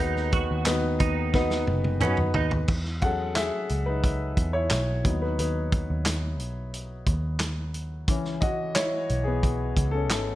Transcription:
0.00 0.46 D#2 loud
0.00 0.63 D#3 medium
0.00 0.66 B3 medium
0.00 0.31 D#4 loud
0.00 0.66 D#4 medium
0.00 0.67 F#4 medium
0.00 2.71 G#4 medium
0.00 0.63 B4 medium
0.00 2.71 C#5 medium
0.16 snare soft
0.32 0.65 F#4 medium
0.32 kick loud
0.32 closed hi-hat medium
0.51 0.98 D#2 medium
0.66 1.30 B3 medium
0.66 1.30 D#4 medium
0.66 1.31 F#4 medium
0.66 1.31 B4 medium
0.66 snare loud
0.66 clap medium
0.66 closed hi-hat loud
1.00 1.64 D#2 medium
1.00 1.64 D#4 medium
1.00 kick medium
1.00 closed hi-hat medium
1.33 1.98 B3 medium
1.33 1.98 D#4 medium
1.33 1.98 F#4 medium
1.33 1.98 B4 medium
1.33 kick medium
1.33 snare medium
1.50 snare medium
1.67 2.03 F#1 medium
1.67 high tom medium
1.84 high tom medium
2.01 2.33 F#2 medium
2.01 2.65 B3 medium
2.01 2.18 C#4 medium
2.01 2.66 D#4 medium
2.01 2.66 F#4 medium
2.01 2.66 B4 medium
2.01 clap medium
2.01 mid tom medium
2.17 mid tom medium
2.34 2.67 D#2 medium
2.34 2.51 D#4 medium
2.34 floor tom loud
2.51 floor tom medium
2.68 3.49 E2 medium
2.68 kick medium
2.68 crash medium
2.85 snare soft
3.01 3.48 F#3 soft
3.01 3.48 C#4 soft
3.01 3.36 G#4 soft
3.01 3.35 A4 medium
3.01 3.34 F#5 medium
3.01 kick medium
3.01 closed hi-hat medium
3.35 3.84 G#4 medium
3.35 3.88 E5 medium
3.35 snare medium
3.35 clap medium
3.35 closed hi-hat medium
3.69 4.34 C#2 medium
3.69 closed hi-hat medium
3.86 4.51 D#4 medium
3.86 4.56 B4 medium
4.04 kick medium
4.04 closed hi-hat medium
4.37 4.69 E2 medium
4.37 kick medium
4.37 closed hi-hat medium
4.53 5.18 E4 medium
4.53 5.23 C#5 medium
4.70 5.03 B1 medium
4.70 snare medium
4.70 clap medium
4.70 closed hi-hat medium
5.04 5.37 D#2 medium
5.04 6.02 F#3 soft
5.04 6.02 B3 soft
5.04 5.22 D#4 soft
5.04 kick medium
5.04 closed hi-hat medium
5.22 5.38 D#4 soft
5.22 5.38 B4 medium
5.39 5.86 D#2 medium
5.39 6.03 D#4 medium
5.39 6.03 B4 medium
5.39 closed hi-hat medium
5.72 kick medium
5.72 closed hi-hat soft
5.90 6.40 D#2 medium
6.06 snare loud
6.06 clap medium
6.06 closed hi-hat medium
6.39 7.04 B1 medium
6.39 closed hi-hat medium
6.74 closed hi-hat medium
7.06 8.08 D#2 medium
7.06 kick medium
7.06 closed hi-hat medium
7.40 snare medium
7.40 clap medium
7.40 closed hi-hat medium
7.74 closed hi-hat medium
8.08 8.89 C#2 loud
8.08 10.35 E3 medium
8.08 9.93 C#4 medium
8.08 kick medium
8.08 closed hi-hat medium
8.25 snare soft
8.41 8.74 F#4 medium
8.41 8.76 D#5 medium
8.41 kick medium
8.41 closed hi-hat medium
8.75 9.24 E4 medium
8.75 9.28 C#5 medium
8.75 snare loud
8.75 clap medium
8.75 closed hi-hat medium
9.09 9.74 B1 medium
9.09 closed hi-hat medium
9.24 9.90 B3 medium
9.24 9.95 G#4 medium
9.43 kick medium
9.43 closed hi-hat medium
9.76 10.11 C#2 medium
9.76 kick medium
9.76 closed hi-hat medium
9.91 10.35 C#4 medium
9.91 10.35 A4 medium
10.10 10.35 G#1 medium
10.10 snare medium
10.10 clap medium
10.10 closed hi-hat medium

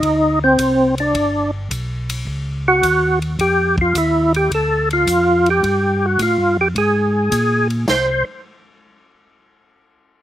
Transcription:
0.00 0.57 D2 medium
0.00 0.39 D#4 loud
0.00 kick soft
0.00 ride medium
0.44 0.95 C4 medium
0.58 1.13 C2 medium
0.58 kick soft
0.58 hi-hat pedal medium
0.58 ride medium
0.98 1.51 D4 medium
0.98 ride soft
1.14 1.69 G1 medium
1.14 kick soft
1.14 ride medium
1.71 2.25 B1 medium
1.71 kick soft
1.71 hi-hat pedal soft
1.71 ride medium
2.10 ride medium
2.27 2.81 C#2 medium
2.27 kick soft
2.68 3.19 F#4 loud
2.82 3.37 D#2 medium
2.82 kick soft
2.82 hi-hat pedal medium
2.82 ride medium
3.22 ride soft
3.39 3.93 F2 medium
3.39 3.76 G4 medium
3.39 kick soft
3.39 ride medium
3.78 3.97 F4 medium
3.78 kick medium
3.95 4.49 D#2 medium
3.95 4.33 E4 medium
3.95 kick soft
3.95 hi-hat pedal medium
3.95 ride medium
4.34 4.51 G4 medium
4.34 ride soft
4.51 5.06 D2 medium
4.51 4.89 A4 medium
4.51 kick soft
4.51 ride medium
4.90 5.49 F4 medium
4.90 ride soft
5.07 5.61 F2 medium
5.07 kick soft
5.07 hi-hat pedal medium
5.07 ride medium
5.46 ride soft
5.50 6.06 G4 medium
5.63 6.18 G2 medium
5.63 kick soft
5.63 ride medium
6.05 6.22 F#4 medium
6.19 6.37 A2 medium
6.19 6.57 F4 medium
6.19 kick soft
6.19 hi-hat pedal soft
6.19 ride medium
6.38 6.57 G2 soft
6.57 6.74 F2 medium
6.61 6.68 G4 medium
6.75 7.30 G#2 medium
6.75 7.68 G#4 medium
6.75 kick soft
6.75 ride soft
7.31 7.86 A#2 medium
7.31 kick soft
7.31 hi-hat pedal medium
7.31 ride medium
7.70 ride soft
7.88 8.24 C2 medium
7.88 8.25 C5 medium
7.88 snare medium
7.88 splash medium

